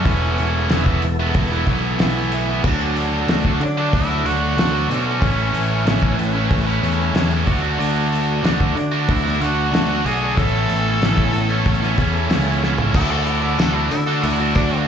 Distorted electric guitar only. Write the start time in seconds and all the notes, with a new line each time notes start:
0.05 E3 A3 B3 E4
0.70 E3 A3 B3 E4
0.86 A3 B3 E4
1.03 muted distorted electric guitar stroke
1.19 A3 B3 E4
1.51 A3 B3 E4
1.67 E3 A3 B3 E4
2.00 E3 A3 B3 E4
2.17 A3 B3 E4
2.32 E3 A3 B3 E4
2.49 A3 B3 E4
2.65 D3 A3 D4 F#4
3.29 D3 A3 D4 F#4
3.45 A3 D4 F#4
3.62 muted distorted electric guitar stroke
3.77 A3 D4 F#4
4.09 A3 D4 F#4
4.25 D3 A3 D4 F#4
4.57 D3 A3 D4 F#4
4.73 A3 D4 F#4
4.89 D3 A3 D4 F#4
5.05 A3 D4 F#4
5.20 A2 E3 A3 C#4 E4
5.85 A2 E3 A3 C#4 E4
6.02 A3 C#4 E4
6.18 muted distorted electric guitar stroke
6.34 A3 C#4 E4
6.66 A3 C#4 E4
6.82 E3 A3 C#4 E4
7.15 A2 E3 A3 C#4 E4
7.31 A3 C#4 E4
7.46 D3 A3 D4 F#4
7.62 A3 D4 F#4
7.78 D3 A3 D4 F#4
8.43 D3 A3 D4 F#4
8.59 A3 D4 F#4
8.76 muted distorted electric guitar stroke
8.92 A3 D4 F#4
9.24 A3 D4 F#4
9.40 D3 A3 D4 F#4
9.72 D3 A3 D4 F#4
9.89 A3 D4 F#4
10.05 D3 A3 D4 F#4
10.21 A3 D4 F#4
10.37 A2 E3 A3 C#4 E4
11.01 A2 E3 A3 C#4 E4
11.18 A3 C#4 E4
11.34 muted distorted electric guitar stroke
11.50 A3 C#4 E4
11.82 A3 C#4 E4
11.98 E3 A3 C#4 E4
12.31 A2 E3 A3 C#4 E4
12.47 A3 C#4 E4
12.63 E3 A3 C#4 E4
12.79 A3 C#4 E4
12.95 D3 A3 D4 F#4
13.59 D3 A3 D4 F#4
13.76 A3 D4 F#4
13.92 muted distorted electric guitar stroke
14.08 A3 D4 F#4
14.40 A3 D4 F#4
14.56 D3 A3 D4 F#4